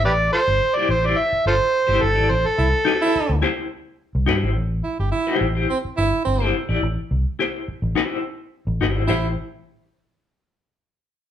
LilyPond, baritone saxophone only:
\new Staff \with { instrumentName = "Baritone saxophone" } { \time 4/4 \key a \minor \tempo 4 = 106 r1 | r8 e'16 r8 e'8. r2 | r8 e'16 g'16 e'8 r8 c'16 r16 e'8 c'8 r8 | r1 |
e'8 r2. r8 | }